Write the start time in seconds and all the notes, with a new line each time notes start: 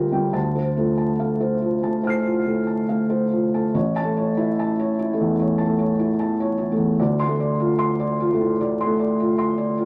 Already playing: D3 G3 F4 A#4 F5 G5 F6 A#6
0.12 G3 G5
0.32 D2 A5
0.55 C5
0.76 A3 F4
0.98 A5
1.19 A3 F5
1.40 C5
1.61 F4
1.83 A3 A5
2.03 A2 C5 A5 F6
2.10 C7
2.25 F4
2.46 A2 A3
2.67 A5
2.89 A3 F5
3.10 C5
3.31 F4
3.54 A3 A5
3.74 A1 C#5
3.96 A5
4.03 A3
4.17 C#5
4.37 E4
4.59 A5
4.79 C#5
4.99 E4
5.13 A3
5.21 E2
5.39 E2 C#5
5.58 A5
5.65 A3
5.79 C#5
5.99 E4
6.20 A5
6.40 C#5
6.58 E4
6.72 A3
6.77 E2
6.99 D2 D5
7.20 C6
7.27 A3
7.40 D5
7.59 F4
7.79 C6
8.00 D5
8.20 F4
8.33 A3
8.40 A2
8.61 A2 D5
8.81 C6
8.86 A3
8.99 D5
9.20 F4
9.38 C6
9.57 D5
9.77 F4